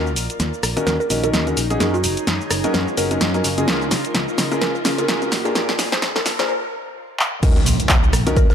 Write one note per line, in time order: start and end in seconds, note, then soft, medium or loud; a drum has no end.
0.00 0.16 D#2 medium
0.00 2.56 D#4 medium
0.00 0.68 F4 medium
0.00 0.69 A#4 medium
0.00 riser medium
0.07 shaker soft
0.13 0.27 A#1 medium
0.13 2.56 G#4 medium
0.13 open hi-hat loud
0.17 shaker medium
0.30 closed hi-hat medium
0.30 shaker soft
0.40 0.50 D#2 medium
0.40 snare soft
0.40 closed hi-hat medium
0.40 shaker soft
0.54 shaker soft
0.59 2.56 C#5 medium
0.63 0.74 A#1 medium
0.63 cross-stick medium
0.63 open hi-hat loud
0.63 shaker medium
0.77 0.95 D#3 medium
0.77 0.95 C#4 medium
0.77 0.95 D#4 medium
0.77 0.95 F#4 medium
0.77 0.95 A#4 loud
0.77 closed hi-hat medium
0.77 shaker soft
0.86 0.97 D#2 medium
0.86 0.95 A#4 medium
0.86 snare soft
0.86 closed hi-hat medium
0.86 shaker soft
1.00 1.06 A#4 medium
1.00 shaker soft
1.10 1.29 A#1 medium
1.10 1.21 D#3 medium
1.10 1.21 C#4 medium
1.10 1.21 D#4 medium
1.10 1.21 F#4 medium
1.10 1.21 A#4 medium
1.10 open hi-hat loud
1.10 shaker medium
1.24 1.44 D#3 medium
1.24 1.44 C#4 medium
1.24 1.44 D#4 medium
1.24 1.44 F#4 medium
1.24 1.44 A#4 medium
1.24 closed hi-hat medium
1.24 shaker soft
1.33 1.53 D#2 medium
1.33 snare medium
1.33 closed hi-hat medium
1.33 shaker soft
1.47 1.57 D#3 medium
1.47 1.57 C#4 medium
1.47 1.57 D#4 medium
1.47 1.57 F#4 medium
1.47 1.57 A#4 medium
1.47 closed hi-hat soft
1.47 shaker soft
1.57 1.76 A#1 loud
1.57 open hi-hat loud
1.57 shaker medium
1.70 1.79 F#3 medium
1.70 1.79 C#4 medium
1.70 1.79 D#4 medium
1.70 1.79 F#4 medium
1.70 1.77 G#4 medium
1.70 1.79 G#4 medium
1.70 closed hi-hat medium
1.70 shaker soft
1.80 2.05 F#2 medium
1.80 1.94 F#3 medium
1.80 1.94 C#4 medium
1.80 1.94 D#4 medium
1.80 6.49 F4 medium
1.80 1.94 F#4 medium
1.80 1.89 G#4 medium
1.80 1.94 A#4 medium
1.80 snare medium
1.80 closed hi-hat medium
1.80 shaker soft
1.94 2.14 F#4 medium
1.94 6.49 A#4 medium
1.94 shaker soft
2.04 2.14 F#1 medium
2.04 open hi-hat loud
2.04 shaker medium
2.17 closed hi-hat soft
2.17 shaker soft
2.27 2.38 F#2 medium
2.27 snare medium
2.27 closed hi-hat medium
2.27 shaker soft
2.41 shaker soft
2.50 2.61 F#1 medium
2.50 cross-stick medium
2.50 open hi-hat loud
2.50 shaker medium
2.64 2.83 F#3 medium
2.64 2.83 C#4 medium
2.64 2.83 D#4 medium
2.64 2.83 F#4 medium
2.64 2.83 A#4 loud
2.64 5.32 D#5 medium
2.64 closed hi-hat soft
2.64 shaker soft
2.74 2.85 F#2 loud
2.74 2.95 A#4 medium
2.74 snare medium
2.74 closed hi-hat medium
2.74 shaker soft
2.88 shaker soft
2.97 3.17 F#1 medium
2.97 3.09 F#3 medium
2.97 3.09 C#4 medium
2.97 3.09 D#4 medium
2.97 3.09 F#4 medium
2.97 3.09 A#4 medium
2.97 3.34 A#4 medium
2.97 open hi-hat loud
2.97 shaker medium
3.11 3.31 F#3 medium
3.11 3.31 C#4 medium
3.11 3.31 D#4 medium
3.11 3.31 F#4 medium
3.11 3.31 A#4 medium
3.11 closed hi-hat medium
3.11 shaker soft
3.21 3.40 F#2 medium
3.21 snare medium
3.21 closed hi-hat medium
3.21 shaker soft
3.34 3.45 F#3 medium
3.34 3.45 C#4 medium
3.34 3.45 D#4 medium
3.34 3.45 F#4 medium
3.34 3.45 A#4 medium
3.34 closed hi-hat soft
3.34 shaker soft
3.44 3.64 F#1 loud
3.44 open hi-hat loud
3.44 shaker medium
3.58 3.66 C#3 medium
3.58 3.66 C#4 medium
3.58 3.66 D#4 medium
3.58 3.66 F#4 medium
3.58 3.66 G#4 medium
3.58 closed hi-hat soft
3.58 shaker soft
3.68 3.93 C#2 medium
3.68 3.81 C#3 medium
3.68 3.81 C#4 medium
3.68 3.81 F4 medium
3.68 3.81 G#4 medium
3.68 3.81 A#4 medium
3.68 snare medium
3.68 closed hi-hat medium
3.68 shaker soft
3.82 shaker soft
3.91 4.02 C#3 medium
3.91 snare medium
3.91 open hi-hat loud
3.91 shaker medium
4.05 closed hi-hat medium
4.05 shaker soft
4.15 4.25 C#2 medium
4.15 snare medium
4.15 closed hi-hat medium
4.15 shaker soft
4.28 shaker soft
4.38 4.49 C#3 medium
4.38 snare medium
4.38 open hi-hat loud
4.38 shaker medium
4.51 4.70 C#3 loud
4.51 4.70 C#4 medium
4.51 4.70 F4 medium
4.51 4.70 G#4 medium
4.51 4.70 A#4 loud
4.51 closed hi-hat soft
4.51 shaker soft
4.61 4.72 C#2 loud
4.61 4.70 A#4 medium
4.61 snare medium
4.61 closed hi-hat medium
4.61 shaker soft
4.75 4.81 A#4 medium
4.75 shaker soft
4.85 4.96 C#3 medium
4.85 5.04 C#3 medium
4.85 4.96 C#4 medium
4.85 4.96 F4 medium
4.85 4.96 G#4 medium
4.85 4.96 A#4 medium
4.85 snare medium
4.85 open hi-hat loud
4.85 shaker medium
4.98 5.19 C#3 medium
4.98 5.19 C#4 medium
4.98 5.19 F4 medium
4.98 5.19 G#4 medium
4.98 5.19 A#4 medium
4.98 5.19 A#4 loud
4.98 closed hi-hat soft
4.98 shaker soft
5.08 5.28 C#2 medium
5.08 snare medium
5.08 closed hi-hat medium
5.08 shaker soft
5.22 5.31 C#4 medium
5.22 5.31 F4 medium
5.22 5.31 G#4 medium
5.22 5.31 A#4 medium
5.22 closed hi-hat soft
5.22 shaker soft
5.32 5.51 A#2 loud
5.32 snare medium
5.32 open hi-hat loud
5.32 shaker medium
5.45 5.54 A#2 medium
5.45 5.54 D4 medium
5.45 5.54 F4 medium
5.45 5.52 G#4 medium
5.45 5.54 G#4 medium
5.45 5.54 A#4 medium
5.45 closed hi-hat soft
5.45 shaker soft
5.55 5.80 A#1 loud
5.55 5.69 A#2 medium
5.55 5.69 D4 medium
5.55 5.69 F4 medium
5.55 5.64 G#4 medium
5.55 5.69 G#4 medium
5.55 5.69 A#4 medium
5.55 snare medium
5.55 closed hi-hat medium
5.55 shaker soft
5.69 snare medium
5.69 shaker soft
5.79 5.89 A#2 medium
5.79 snare loud
5.79 open hi-hat loud
5.79 shaker medium
5.92 6.12 C5 medium
5.92 snare medium
5.92 closed hi-hat soft
5.92 shaker soft
6.02 6.13 A#1 loud
6.02 snare loud
6.02 closed hi-hat medium
6.02 shaker soft
6.16 6.36 A#4 medium
6.16 snare medium
6.16 shaker soft
6.25 6.36 A#2 medium
6.25 snare loud
6.25 open hi-hat loud
6.25 shaker medium
6.39 6.49 A#2 loud
6.39 6.49 D4 medium
6.39 6.49 F4 medium
6.39 6.49 G#4 medium
6.39 6.49 A#4 loud
6.39 6.46 C5 medium
6.39 snare medium
6.39 closed hi-hat soft
6.39 shaker soft
6.49 6.58 C5 medium
7.19 clap medium
7.43 7.66 D#2 loud
7.43 7.57 D#3 medium
7.43 7.56 C#4 medium
7.43 7.57 D#4 medium
7.43 8.55 D#4 medium
7.43 7.57 F#4 medium
7.43 7.57 A#4 medium
7.43 kick loud
7.43 closed hi-hat medium
7.43 crash loud
7.43 impact medium
7.43 shaker soft
7.56 snare medium
7.56 shaker soft
7.66 7.77 A#1 medium
7.66 closed hi-hat medium
7.66 open hi-hat loud
7.66 shaker medium
7.73 8.55 G#4 medium
7.80 closed hi-hat medium
7.80 shaker soft
7.89 8.00 D#2 medium
7.89 kick loud
7.89 snare loud
7.89 clap loud
7.89 closed hi-hat medium
7.89 shaker soft
8.02 8.55 C#5 medium
8.02 shaker soft
8.13 8.24 A#1 medium
8.13 cross-stick medium
8.13 closed hi-hat medium
8.13 open hi-hat loud
8.13 shaker medium
8.27 8.45 D#3 medium
8.27 8.45 C#4 medium
8.27 8.45 D#4 medium
8.27 8.45 F#4 medium
8.27 8.45 A#4 loud
8.27 closed hi-hat medium
8.27 shaker soft
8.37 8.47 D#2 loud
8.37 8.45 A#4 medium
8.37 kick loud
8.37 closed hi-hat medium
8.37 shaker soft
8.50 8.55 A#4 medium
8.50 snare medium
8.50 shaker soft